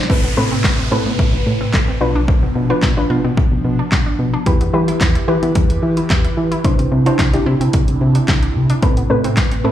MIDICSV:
0, 0, Header, 1, 7, 480
1, 0, Start_track
1, 0, Key_signature, 0, "minor"
1, 0, Tempo, 545455
1, 87, Time_signature, 4, 2, 24, 8
1, 8552, End_track
2, 0, Start_track
2, 0, Title_t, "Synth pluck"
2, 0, Program_c, 0, 84
2, 84, Note_on_c, 0, 60, 83
2, 86, Note_on_c, 0, 69, 78
2, 88, Note_on_c, 0, 71, 95
2, 213, Note_off_c, 0, 60, 0
2, 214, Note_off_c, 0, 69, 0
2, 214, Note_off_c, 0, 71, 0
2, 325, Note_on_c, 0, 60, 81
2, 327, Note_on_c, 0, 69, 78
2, 329, Note_on_c, 0, 71, 95
2, 565, Note_off_c, 0, 60, 0
2, 567, Note_off_c, 0, 69, 0
2, 568, Note_off_c, 0, 71, 0
2, 804, Note_on_c, 0, 60, 90
2, 807, Note_on_c, 0, 69, 78
2, 809, Note_on_c, 0, 71, 99
2, 1285, Note_off_c, 0, 60, 0
2, 1286, Note_off_c, 0, 69, 0
2, 1287, Note_off_c, 0, 71, 0
2, 1766, Note_on_c, 0, 62, 91
2, 1768, Note_on_c, 0, 65, 80
2, 1770, Note_on_c, 0, 71, 98
2, 2246, Note_off_c, 0, 62, 0
2, 2248, Note_off_c, 0, 65, 0
2, 2249, Note_off_c, 0, 71, 0
2, 2373, Note_on_c, 0, 62, 81
2, 2375, Note_on_c, 0, 65, 76
2, 2377, Note_on_c, 0, 71, 94
2, 2486, Note_off_c, 0, 62, 0
2, 2487, Note_off_c, 0, 65, 0
2, 2488, Note_off_c, 0, 71, 0
2, 2614, Note_on_c, 0, 62, 79
2, 2616, Note_on_c, 0, 65, 74
2, 2619, Note_on_c, 0, 71, 87
2, 3093, Note_off_c, 0, 62, 0
2, 3094, Note_off_c, 0, 65, 0
2, 3096, Note_off_c, 0, 71, 0
2, 3926, Note_on_c, 0, 64, 86
2, 3929, Note_on_c, 0, 67, 79
2, 3931, Note_on_c, 0, 71, 93
2, 4054, Note_off_c, 0, 64, 0
2, 4055, Note_off_c, 0, 67, 0
2, 4056, Note_off_c, 0, 71, 0
2, 4166, Note_on_c, 0, 64, 84
2, 4169, Note_on_c, 0, 67, 79
2, 4170, Note_on_c, 0, 71, 92
2, 4406, Note_off_c, 0, 64, 0
2, 4407, Note_off_c, 0, 67, 0
2, 4408, Note_off_c, 0, 71, 0
2, 4645, Note_on_c, 0, 64, 84
2, 4648, Note_on_c, 0, 67, 81
2, 4650, Note_on_c, 0, 71, 96
2, 5125, Note_off_c, 0, 64, 0
2, 5127, Note_off_c, 0, 67, 0
2, 5128, Note_off_c, 0, 71, 0
2, 5847, Note_on_c, 0, 62, 87
2, 5849, Note_on_c, 0, 64, 76
2, 5851, Note_on_c, 0, 72, 92
2, 6030, Note_off_c, 0, 62, 0
2, 6031, Note_off_c, 0, 64, 0
2, 6032, Note_off_c, 0, 72, 0
2, 6214, Note_on_c, 0, 62, 87
2, 6216, Note_on_c, 0, 64, 77
2, 6219, Note_on_c, 0, 72, 95
2, 6327, Note_off_c, 0, 62, 0
2, 6328, Note_off_c, 0, 64, 0
2, 6329, Note_off_c, 0, 72, 0
2, 6454, Note_on_c, 0, 62, 81
2, 6456, Note_on_c, 0, 64, 74
2, 6458, Note_on_c, 0, 67, 91
2, 6933, Note_off_c, 0, 62, 0
2, 6934, Note_off_c, 0, 64, 0
2, 6935, Note_off_c, 0, 67, 0
2, 7765, Note_on_c, 0, 60, 87
2, 7767, Note_on_c, 0, 69, 77
2, 7769, Note_on_c, 0, 71, 92
2, 7893, Note_off_c, 0, 60, 0
2, 7894, Note_off_c, 0, 69, 0
2, 7895, Note_off_c, 0, 71, 0
2, 8006, Note_on_c, 0, 60, 89
2, 8008, Note_on_c, 0, 69, 80
2, 8010, Note_on_c, 0, 71, 95
2, 8246, Note_off_c, 0, 60, 0
2, 8247, Note_off_c, 0, 69, 0
2, 8248, Note_off_c, 0, 71, 0
2, 8485, Note_on_c, 0, 60, 87
2, 8487, Note_on_c, 0, 69, 81
2, 8489, Note_on_c, 0, 71, 94
2, 8552, Note_off_c, 0, 60, 0
2, 8552, Note_off_c, 0, 69, 0
2, 8552, Note_off_c, 0, 71, 0
2, 8552, End_track
3, 0, Start_track
3, 0, Title_t, "Analog synth pad"
3, 0, Program_c, 1, 89
3, 87, Note_on_c, 1, 48, 84
3, 88, Note_on_c, 1, 57, 76
3, 88, Note_on_c, 1, 71, 92
3, 1750, Note_off_c, 1, 48, 0
3, 1750, Note_off_c, 1, 57, 0
3, 1750, Note_off_c, 1, 71, 0
3, 1767, Note_on_c, 1, 53, 85
3, 1767, Note_on_c, 1, 59, 78
3, 1767, Note_on_c, 1, 62, 94
3, 3905, Note_off_c, 1, 59, 0
3, 3905, Note_off_c, 1, 62, 0
3, 3906, Note_off_c, 1, 53, 0
3, 3930, Note_on_c, 1, 52, 87
3, 3930, Note_on_c, 1, 64, 75
3, 3930, Note_on_c, 1, 67, 79
3, 3930, Note_on_c, 1, 71, 88
3, 5829, Note_off_c, 1, 52, 0
3, 5829, Note_off_c, 1, 64, 0
3, 5829, Note_off_c, 1, 67, 0
3, 5829, Note_off_c, 1, 71, 0
3, 5848, Note_on_c, 1, 62, 78
3, 5848, Note_on_c, 1, 64, 90
3, 5849, Note_on_c, 1, 48, 84
3, 5849, Note_on_c, 1, 60, 76
3, 7748, Note_off_c, 1, 62, 0
3, 7748, Note_off_c, 1, 64, 0
3, 7749, Note_off_c, 1, 60, 0
3, 7766, Note_on_c, 1, 57, 75
3, 7767, Note_on_c, 1, 71, 93
3, 8552, Note_off_c, 1, 48, 0
3, 8552, Note_off_c, 1, 57, 0
3, 8552, Note_off_c, 1, 71, 0
3, 8552, End_track
4, 0, Start_track
4, 0, Title_t, "Synth arpeggio sound"
4, 0, Program_c, 2, 84
4, 87, Note_on_c, 2, 57, 83
4, 205, Note_off_c, 2, 57, 0
4, 214, Note_on_c, 2, 59, 70
4, 319, Note_off_c, 2, 59, 0
4, 327, Note_on_c, 2, 57, 69
4, 445, Note_off_c, 2, 57, 0
4, 455, Note_on_c, 2, 60, 86
4, 560, Note_off_c, 2, 60, 0
4, 694, Note_on_c, 2, 60, 81
4, 799, Note_off_c, 2, 60, 0
4, 807, Note_on_c, 2, 64, 94
4, 925, Note_off_c, 2, 64, 0
4, 935, Note_on_c, 2, 59, 75
4, 1040, Note_off_c, 2, 59, 0
4, 1048, Note_on_c, 2, 57, 73
4, 1166, Note_off_c, 2, 57, 0
4, 1415, Note_on_c, 2, 60, 83
4, 1519, Note_off_c, 2, 60, 0
4, 1528, Note_on_c, 2, 69, 97
4, 1646, Note_off_c, 2, 69, 0
4, 1655, Note_on_c, 2, 60, 82
4, 1760, Note_off_c, 2, 60, 0
4, 1896, Note_on_c, 2, 62, 91
4, 2000, Note_off_c, 2, 62, 0
4, 2008, Note_on_c, 2, 53, 87
4, 2126, Note_off_c, 2, 53, 0
4, 2136, Note_on_c, 2, 59, 71
4, 2240, Note_off_c, 2, 59, 0
4, 2249, Note_on_c, 2, 53, 70
4, 2366, Note_off_c, 2, 53, 0
4, 2375, Note_on_c, 2, 62, 94
4, 2480, Note_off_c, 2, 62, 0
4, 2615, Note_on_c, 2, 62, 78
4, 2720, Note_off_c, 2, 62, 0
4, 2729, Note_on_c, 2, 65, 94
4, 2846, Note_off_c, 2, 65, 0
4, 2856, Note_on_c, 2, 59, 78
4, 2960, Note_off_c, 2, 59, 0
4, 2968, Note_on_c, 2, 53, 78
4, 3086, Note_off_c, 2, 53, 0
4, 3336, Note_on_c, 2, 62, 80
4, 3440, Note_off_c, 2, 62, 0
4, 3447, Note_on_c, 2, 77, 94
4, 3566, Note_off_c, 2, 77, 0
4, 3575, Note_on_c, 2, 62, 81
4, 3680, Note_off_c, 2, 62, 0
4, 3815, Note_on_c, 2, 62, 88
4, 3920, Note_off_c, 2, 62, 0
4, 3929, Note_on_c, 2, 55, 87
4, 4046, Note_off_c, 2, 55, 0
4, 4056, Note_on_c, 2, 59, 72
4, 4160, Note_off_c, 2, 59, 0
4, 4168, Note_on_c, 2, 55, 66
4, 4286, Note_off_c, 2, 55, 0
4, 4295, Note_on_c, 2, 64, 92
4, 4399, Note_off_c, 2, 64, 0
4, 4534, Note_on_c, 2, 64, 77
4, 4639, Note_off_c, 2, 64, 0
4, 4647, Note_on_c, 2, 67, 90
4, 4765, Note_off_c, 2, 67, 0
4, 4775, Note_on_c, 2, 59, 73
4, 4880, Note_off_c, 2, 59, 0
4, 4887, Note_on_c, 2, 55, 73
4, 5005, Note_off_c, 2, 55, 0
4, 5255, Note_on_c, 2, 64, 79
4, 5359, Note_off_c, 2, 64, 0
4, 5367, Note_on_c, 2, 79, 95
4, 5486, Note_off_c, 2, 79, 0
4, 5494, Note_on_c, 2, 64, 79
4, 5599, Note_off_c, 2, 64, 0
4, 5734, Note_on_c, 2, 64, 92
4, 5839, Note_off_c, 2, 64, 0
4, 5846, Note_on_c, 2, 55, 86
4, 5965, Note_off_c, 2, 55, 0
4, 5974, Note_on_c, 2, 60, 72
4, 6079, Note_off_c, 2, 60, 0
4, 6087, Note_on_c, 2, 55, 68
4, 6206, Note_off_c, 2, 55, 0
4, 6214, Note_on_c, 2, 62, 89
4, 6319, Note_off_c, 2, 62, 0
4, 6455, Note_on_c, 2, 62, 77
4, 6560, Note_off_c, 2, 62, 0
4, 6568, Note_on_c, 2, 64, 95
4, 6686, Note_off_c, 2, 64, 0
4, 6694, Note_on_c, 2, 60, 73
4, 6799, Note_off_c, 2, 60, 0
4, 6807, Note_on_c, 2, 55, 73
4, 6926, Note_off_c, 2, 55, 0
4, 7175, Note_on_c, 2, 62, 78
4, 7279, Note_off_c, 2, 62, 0
4, 7288, Note_on_c, 2, 67, 96
4, 7406, Note_off_c, 2, 67, 0
4, 7414, Note_on_c, 2, 62, 79
4, 7519, Note_off_c, 2, 62, 0
4, 7655, Note_on_c, 2, 62, 91
4, 7760, Note_off_c, 2, 62, 0
4, 7769, Note_on_c, 2, 57, 88
4, 7886, Note_off_c, 2, 57, 0
4, 7896, Note_on_c, 2, 59, 75
4, 8000, Note_off_c, 2, 59, 0
4, 8008, Note_on_c, 2, 57, 70
4, 8126, Note_off_c, 2, 57, 0
4, 8136, Note_on_c, 2, 60, 92
4, 8240, Note_off_c, 2, 60, 0
4, 8376, Note_on_c, 2, 60, 81
4, 8480, Note_off_c, 2, 60, 0
4, 8489, Note_on_c, 2, 64, 95
4, 8552, Note_off_c, 2, 64, 0
4, 8552, End_track
5, 0, Start_track
5, 0, Title_t, "FM bass"
5, 0, Program_c, 3, 39
5, 86, Note_on_c, 3, 33, 112
5, 169, Note_off_c, 3, 33, 0
5, 214, Note_on_c, 3, 33, 86
5, 287, Note_off_c, 3, 33, 0
5, 328, Note_on_c, 3, 45, 105
5, 483, Note_off_c, 3, 45, 0
5, 566, Note_on_c, 3, 33, 100
5, 722, Note_off_c, 3, 33, 0
5, 808, Note_on_c, 3, 45, 103
5, 891, Note_off_c, 3, 45, 0
5, 935, Note_on_c, 3, 45, 89
5, 1008, Note_off_c, 3, 45, 0
5, 1047, Note_on_c, 3, 33, 109
5, 1130, Note_off_c, 3, 33, 0
5, 1175, Note_on_c, 3, 33, 100
5, 1248, Note_off_c, 3, 33, 0
5, 1288, Note_on_c, 3, 45, 100
5, 1444, Note_off_c, 3, 45, 0
5, 1529, Note_on_c, 3, 33, 94
5, 1684, Note_off_c, 3, 33, 0
5, 1768, Note_on_c, 3, 35, 102
5, 2006, Note_off_c, 3, 35, 0
5, 2136, Note_on_c, 3, 35, 97
5, 2209, Note_off_c, 3, 35, 0
5, 2248, Note_on_c, 3, 47, 100
5, 2404, Note_off_c, 3, 47, 0
5, 2487, Note_on_c, 3, 35, 110
5, 2643, Note_off_c, 3, 35, 0
5, 2729, Note_on_c, 3, 47, 98
5, 2811, Note_off_c, 3, 47, 0
5, 2856, Note_on_c, 3, 47, 96
5, 2929, Note_off_c, 3, 47, 0
5, 2969, Note_on_c, 3, 35, 104
5, 3051, Note_off_c, 3, 35, 0
5, 3096, Note_on_c, 3, 35, 103
5, 3169, Note_off_c, 3, 35, 0
5, 3208, Note_on_c, 3, 47, 100
5, 3364, Note_off_c, 3, 47, 0
5, 3450, Note_on_c, 3, 35, 97
5, 3605, Note_off_c, 3, 35, 0
5, 3688, Note_on_c, 3, 47, 93
5, 3843, Note_off_c, 3, 47, 0
5, 3927, Note_on_c, 3, 40, 115
5, 4010, Note_off_c, 3, 40, 0
5, 4055, Note_on_c, 3, 40, 96
5, 4128, Note_off_c, 3, 40, 0
5, 4168, Note_on_c, 3, 52, 103
5, 4324, Note_off_c, 3, 52, 0
5, 4407, Note_on_c, 3, 40, 110
5, 4563, Note_off_c, 3, 40, 0
5, 4648, Note_on_c, 3, 52, 107
5, 4730, Note_off_c, 3, 52, 0
5, 4775, Note_on_c, 3, 52, 101
5, 4848, Note_off_c, 3, 52, 0
5, 4889, Note_on_c, 3, 40, 113
5, 4971, Note_off_c, 3, 40, 0
5, 5015, Note_on_c, 3, 40, 96
5, 5088, Note_off_c, 3, 40, 0
5, 5127, Note_on_c, 3, 52, 103
5, 5283, Note_off_c, 3, 52, 0
5, 5370, Note_on_c, 3, 40, 102
5, 5525, Note_off_c, 3, 40, 0
5, 5608, Note_on_c, 3, 52, 97
5, 5764, Note_off_c, 3, 52, 0
5, 5848, Note_on_c, 3, 36, 100
5, 5930, Note_off_c, 3, 36, 0
5, 5975, Note_on_c, 3, 36, 99
5, 6048, Note_off_c, 3, 36, 0
5, 6088, Note_on_c, 3, 48, 103
5, 6244, Note_off_c, 3, 48, 0
5, 6327, Note_on_c, 3, 36, 99
5, 6483, Note_off_c, 3, 36, 0
5, 6567, Note_on_c, 3, 48, 105
5, 6650, Note_off_c, 3, 48, 0
5, 6695, Note_on_c, 3, 48, 98
5, 6768, Note_off_c, 3, 48, 0
5, 6808, Note_on_c, 3, 36, 114
5, 6891, Note_off_c, 3, 36, 0
5, 6937, Note_on_c, 3, 36, 104
5, 7009, Note_off_c, 3, 36, 0
5, 7050, Note_on_c, 3, 48, 101
5, 7205, Note_off_c, 3, 48, 0
5, 7289, Note_on_c, 3, 36, 97
5, 7528, Note_on_c, 3, 48, 102
5, 7541, Note_off_c, 3, 36, 0
5, 7683, Note_off_c, 3, 48, 0
5, 7766, Note_on_c, 3, 33, 110
5, 7849, Note_off_c, 3, 33, 0
5, 7896, Note_on_c, 3, 33, 91
5, 7969, Note_off_c, 3, 33, 0
5, 8010, Note_on_c, 3, 45, 106
5, 8165, Note_off_c, 3, 45, 0
5, 8246, Note_on_c, 3, 33, 105
5, 8402, Note_off_c, 3, 33, 0
5, 8489, Note_on_c, 3, 45, 102
5, 8552, Note_off_c, 3, 45, 0
5, 8552, End_track
6, 0, Start_track
6, 0, Title_t, "Downlifter"
6, 0, Program_c, 4, 103
6, 87, Note_on_c, 4, 60, 78
6, 3927, Note_off_c, 4, 60, 0
6, 8552, End_track
7, 0, Start_track
7, 0, Title_t, "Drums"
7, 28, Note_on_c, 9, 38, 94
7, 86, Note_on_c, 9, 36, 105
7, 116, Note_off_c, 9, 38, 0
7, 174, Note_off_c, 9, 36, 0
7, 565, Note_on_c, 9, 39, 118
7, 566, Note_on_c, 9, 36, 117
7, 572, Note_on_c, 9, 38, 98
7, 653, Note_off_c, 9, 39, 0
7, 654, Note_off_c, 9, 36, 0
7, 660, Note_off_c, 9, 38, 0
7, 1047, Note_on_c, 9, 36, 113
7, 1135, Note_off_c, 9, 36, 0
7, 1529, Note_on_c, 9, 36, 120
7, 1529, Note_on_c, 9, 39, 115
7, 1536, Note_on_c, 9, 38, 92
7, 1617, Note_off_c, 9, 36, 0
7, 1617, Note_off_c, 9, 39, 0
7, 1624, Note_off_c, 9, 38, 0
7, 2007, Note_on_c, 9, 36, 108
7, 2095, Note_off_c, 9, 36, 0
7, 2487, Note_on_c, 9, 36, 119
7, 2487, Note_on_c, 9, 39, 122
7, 2494, Note_on_c, 9, 38, 100
7, 2575, Note_off_c, 9, 36, 0
7, 2575, Note_off_c, 9, 39, 0
7, 2582, Note_off_c, 9, 38, 0
7, 2969, Note_on_c, 9, 36, 115
7, 3057, Note_off_c, 9, 36, 0
7, 3450, Note_on_c, 9, 36, 117
7, 3450, Note_on_c, 9, 39, 115
7, 3457, Note_on_c, 9, 38, 97
7, 3538, Note_off_c, 9, 36, 0
7, 3538, Note_off_c, 9, 39, 0
7, 3545, Note_off_c, 9, 38, 0
7, 3928, Note_on_c, 9, 36, 106
7, 3928, Note_on_c, 9, 42, 78
7, 4016, Note_off_c, 9, 36, 0
7, 4016, Note_off_c, 9, 42, 0
7, 4055, Note_on_c, 9, 42, 58
7, 4143, Note_off_c, 9, 42, 0
7, 4296, Note_on_c, 9, 42, 56
7, 4384, Note_off_c, 9, 42, 0
7, 4408, Note_on_c, 9, 36, 123
7, 4408, Note_on_c, 9, 39, 119
7, 4409, Note_on_c, 9, 42, 80
7, 4415, Note_on_c, 9, 38, 99
7, 4496, Note_off_c, 9, 36, 0
7, 4496, Note_off_c, 9, 39, 0
7, 4497, Note_off_c, 9, 42, 0
7, 4503, Note_off_c, 9, 38, 0
7, 4536, Note_on_c, 9, 42, 58
7, 4624, Note_off_c, 9, 42, 0
7, 4776, Note_on_c, 9, 42, 53
7, 4864, Note_off_c, 9, 42, 0
7, 4887, Note_on_c, 9, 42, 93
7, 4889, Note_on_c, 9, 36, 114
7, 4975, Note_off_c, 9, 42, 0
7, 4977, Note_off_c, 9, 36, 0
7, 5016, Note_on_c, 9, 42, 52
7, 5104, Note_off_c, 9, 42, 0
7, 5254, Note_on_c, 9, 42, 59
7, 5342, Note_off_c, 9, 42, 0
7, 5369, Note_on_c, 9, 42, 65
7, 5370, Note_on_c, 9, 36, 118
7, 5370, Note_on_c, 9, 39, 118
7, 5377, Note_on_c, 9, 38, 96
7, 5457, Note_off_c, 9, 42, 0
7, 5458, Note_off_c, 9, 36, 0
7, 5458, Note_off_c, 9, 39, 0
7, 5465, Note_off_c, 9, 38, 0
7, 5496, Note_on_c, 9, 42, 45
7, 5584, Note_off_c, 9, 42, 0
7, 5735, Note_on_c, 9, 42, 56
7, 5823, Note_off_c, 9, 42, 0
7, 5848, Note_on_c, 9, 36, 112
7, 5848, Note_on_c, 9, 42, 74
7, 5936, Note_off_c, 9, 36, 0
7, 5936, Note_off_c, 9, 42, 0
7, 5976, Note_on_c, 9, 42, 58
7, 6064, Note_off_c, 9, 42, 0
7, 6215, Note_on_c, 9, 42, 55
7, 6303, Note_off_c, 9, 42, 0
7, 6328, Note_on_c, 9, 36, 123
7, 6328, Note_on_c, 9, 39, 117
7, 6329, Note_on_c, 9, 42, 84
7, 6335, Note_on_c, 9, 38, 97
7, 6416, Note_off_c, 9, 36, 0
7, 6416, Note_off_c, 9, 39, 0
7, 6417, Note_off_c, 9, 42, 0
7, 6423, Note_off_c, 9, 38, 0
7, 6455, Note_on_c, 9, 42, 57
7, 6543, Note_off_c, 9, 42, 0
7, 6697, Note_on_c, 9, 42, 56
7, 6785, Note_off_c, 9, 42, 0
7, 6805, Note_on_c, 9, 42, 91
7, 6809, Note_on_c, 9, 36, 112
7, 6893, Note_off_c, 9, 42, 0
7, 6897, Note_off_c, 9, 36, 0
7, 6934, Note_on_c, 9, 42, 53
7, 7022, Note_off_c, 9, 42, 0
7, 7172, Note_on_c, 9, 42, 58
7, 7260, Note_off_c, 9, 42, 0
7, 7288, Note_on_c, 9, 42, 67
7, 7289, Note_on_c, 9, 36, 112
7, 7289, Note_on_c, 9, 39, 117
7, 7296, Note_on_c, 9, 38, 97
7, 7376, Note_off_c, 9, 42, 0
7, 7377, Note_off_c, 9, 36, 0
7, 7377, Note_off_c, 9, 39, 0
7, 7384, Note_off_c, 9, 38, 0
7, 7415, Note_on_c, 9, 42, 47
7, 7503, Note_off_c, 9, 42, 0
7, 7653, Note_on_c, 9, 42, 57
7, 7741, Note_off_c, 9, 42, 0
7, 7766, Note_on_c, 9, 42, 74
7, 7767, Note_on_c, 9, 36, 114
7, 7854, Note_off_c, 9, 42, 0
7, 7855, Note_off_c, 9, 36, 0
7, 7894, Note_on_c, 9, 42, 56
7, 7982, Note_off_c, 9, 42, 0
7, 8135, Note_on_c, 9, 42, 59
7, 8223, Note_off_c, 9, 42, 0
7, 8246, Note_on_c, 9, 36, 116
7, 8246, Note_on_c, 9, 39, 121
7, 8246, Note_on_c, 9, 42, 84
7, 8253, Note_on_c, 9, 38, 100
7, 8334, Note_off_c, 9, 36, 0
7, 8334, Note_off_c, 9, 39, 0
7, 8334, Note_off_c, 9, 42, 0
7, 8341, Note_off_c, 9, 38, 0
7, 8374, Note_on_c, 9, 42, 57
7, 8462, Note_off_c, 9, 42, 0
7, 8552, End_track
0, 0, End_of_file